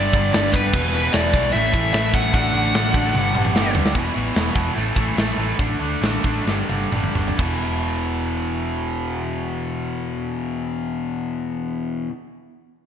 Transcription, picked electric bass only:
Already playing: G1
0.13 G1
0.34 G1
0.54 G1
0.73 E1
1.14 E1
1.34 B1
1.55 A1
1.74 A1
1.94 A1
2.34 A1
2.54 A1
2.75 A1
2.94 A1
3.15 G1
3.36 G1
3.57 G1
3.76 D2
3.95 E1
4.16 A1
4.36 E1
4.56 E1
4.77 A1
4.97 A1
5.18 A1
5.38 A1
5.59 A1
5.81 D2
6.02 A1
6.25 A1
6.47 G1
6.69 G1
6.92 G1
7.15 G1
7.39 E1

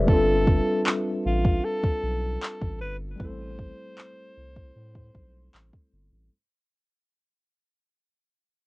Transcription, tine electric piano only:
Already playing: G4 B4 D5 E5
0.04 G3 B3
0.09 D4 F4
0.13 C4 A4
3.16 G3 A3
3.21 C4 E4
3.25 A4

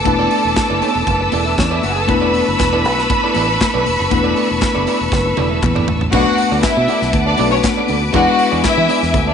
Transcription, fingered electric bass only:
0.06 E1
0.45 E1
0.70 F#1
0.95 E1
1.07 F#1
1.33 E1
1.58 E2
1.84 F#1
2.09 E1
2.48 F#1
2.60 E1
2.85 B1
3.36 A1
3.75 B1
3.87 E1
4.00 F#1
4.12 E1
4.51 E1
4.76 F#1
5.01 E1
5.12 F#1
5.38 E1
5.63 E2
5.88 A1
6.13 B1
6.52 D2
6.77 B2
7.02 B1
7.13 D2
7.39 B1
7.90 D2
8.14 E2
8.53 E2
8.77 E3
9.03 E2
9.14 D2

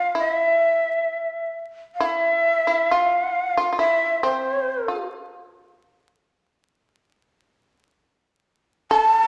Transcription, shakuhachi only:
Already playing: F5
0.19 E5
1.95 F5
2.05 E5
2.91 F5
3.77 E5
4.23 C5
8.91 G#5
9.02 A5

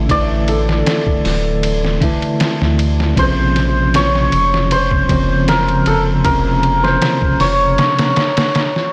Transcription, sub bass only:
Already playing: A1
1.25 D1
2.62 D2
3.17 A#1
4.33 F1
5.10 F1
5.86 F1
7.40 F1

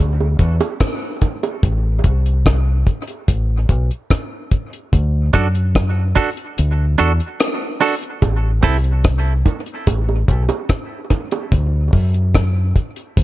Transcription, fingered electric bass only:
0.00 D2
0.40 E2
1.64 A1
2.05 C2
3.29 A1
3.70 B1
4.93 D2
5.35 F#2
6.59 D2
7.00 E2
8.23 A1
8.64 C2
9.88 A1
10.29 B1
11.53 D2
11.94 F#2
13.18 D2

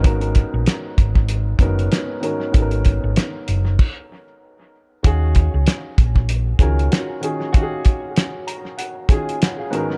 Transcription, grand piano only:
Already playing: G#2 D#3 B3 C#4 F#4 A#4 C#5
0.03 G#2 D#3 B3 C#4 F#4 A#4
1.59 G#2 D#3 B3 C#4 F#4 A#4
2.20 G#2 D#3 B3 C#4 F#4 A#4
2.52 G#2 D#3 B3 C#4 F#4 A4
2.62 A#4
5.03 D#3 C#4 F#4 G#4 F5
6.59 D#3 C#4 F4 F#4 A#4
7.21 D#3 C#4 F4 F#4 G#4
7.53 D#3 C#4 F#4 G4 F5
7.63 G#4
8.47 A#5
8.78 F#5
9.09 D#3 C#4 F4 F#4 G#4 G#5
9.42 F#5
9.59 F5
9.70 G#2 D#3 B3 C#4 F#4 A#4 C#5

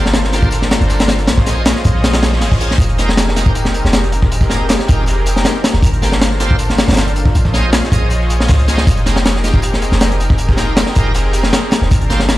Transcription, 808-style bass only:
Already playing: G1
0.81 G1
1.28 A#1
1.85 A#1
2.42 G#1
2.61 A#1
2.78 F1
3.85 F1
4.89 F1
5.74 D#1
5.83 G1
6.88 G1
7.35 A#1
7.92 A#1
8.49 C#2
8.87 F1
9.92 F1
10.96 F1
11.82 D#1
11.91 G1

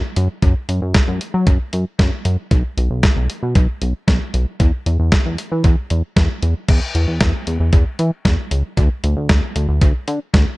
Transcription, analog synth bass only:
0.17 F#2
0.43 F#2
0.69 F#2
0.82 F#2
1.08 F#2
1.34 F#3
1.47 F#2
1.73 F#2
1.99 F#2
2.25 F#2
2.51 B1
2.77 B1
2.90 B1
3.16 B1
3.43 B2
3.56 B1
3.82 B1
4.08 B1
4.34 B1
4.60 E2
4.86 E2
4.99 E2
5.26 E2
5.52 E3
5.64 E2
5.91 E2
6.16 E2
6.43 E2
6.69 E2
6.95 E2
7.08 E2
7.21 E2
7.47 E2
7.60 E2
7.73 E2
7.99 E3
8.25 E2
8.51 C#2
8.77 D2
9.04 D2
9.17 D2
9.30 D2
9.56 D2
9.69 D2
9.82 D2
10.08 D3
10.34 D2

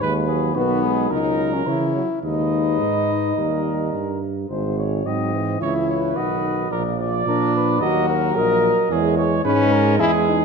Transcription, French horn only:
0.56 B3
1.10 D#4
1.53 C#4
1.66 E4
2.23 D#4
5.05 C4
5.61 E4
6.17 F#4
7.27 D4
7.82 F#4
8.37 A#4
9.45 C#4
10.00 E4
10.27 D#4

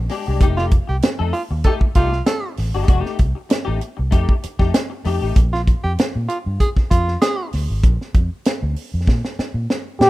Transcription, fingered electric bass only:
0.28 C2
0.41 F1
0.89 C2
1.20 F2
1.51 D#2
1.96 C2
2.58 A1
2.75 G1
2.88 F1
3.19 C2
3.68 A1
3.99 C2
4.12 F2
4.44 muted fingered electric bass stroke
4.59 F2
5.05 F2
5.22 A1
5.36 A#1
5.84 F2
5.99 muted fingered electric bass stroke
6.16 A#2
6.46 G2
6.91 F2
7.54 D2
7.70 G#1
7.84 A#1
8.15 F2
8.63 D2
8.94 F2
9.08 A#2
9.39 muted fingered electric bass stroke
9.54 A#2
10.00 A#2

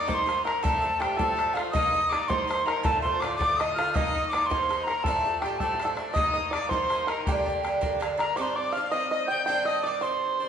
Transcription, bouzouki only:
0.08 G2 D#3 A#3 D#4
0.26 G2 D#3 A#3 D#4
0.44 D#3 A#3 D#4
0.63 A2 F3 A3 D4
0.82 F3 A3 D4
1.00 A2 F3 A3
1.04 D4
1.19 A2 F3 A3 D4
1.37 A2 F3 A3 D4
1.55 F3 A3 D4
1.73 G2 D#3 A#3 D#4
1.92 D#3 A#3 D#4
2.10 G2 D#3 A#3 D#4
2.28 G2 D#3 A#3 D#4
2.47 G2 D#3 A#3 D#4
2.66 D#3 A#3 D#4
2.83 A2 D3 A3 F4
3.02 D3 A3 F4
3.20 A2 D3 A3 F4
3.38 A2 D3 A3 F4
3.58 A2 D3 A3 F4
3.76 D3 A3 F4
3.94 G2 D#3 A#3 D#4
4.15 D#3 A#3 D#4
4.31 G2 D#3 A#3 D#4
4.50 G2 D#3 A#3 D#4
4.69 G2 D#3 A#3 D#4
4.87 D#3 A#3 D#4
5.06 A2 F3 A3 D4
5.25 F3 A3 D4
5.42 A2 F3 A3 D4
5.61 A2 F3 A3 D4
5.79 A2 F3 A3 D4
5.97 F3 A3 D4
6.15 G2 D#3 A#3 D#4
6.34 D#3 A#3 D#4
6.53 G2 D#3 A#3 D#4
6.71 G2 D#3 A#3 D#4
6.90 G2 D#3 A#3 D#4
7.08 D#3 A#3 D#4
7.27 G2 D3 A#3 D4
7.46 D3 A#3 D4
7.63 G2 D3 A#3 D4
7.81 G2 D3 A#3 D4
8.00 G2 D3 A#3 D4
8.17 D3 A#3 D4
8.37 G2 D#3 C4 D4
8.74 G2 D#3 C4 D4
8.91 G2 D#3 C4 D4
9.29 D#3 C4 D4
9.47 G2 D#3 C4 D4
9.84 G2 D#3 C4 D4
10.01 G2 D#3 C4 D4
10.40 D#3 C4 D4

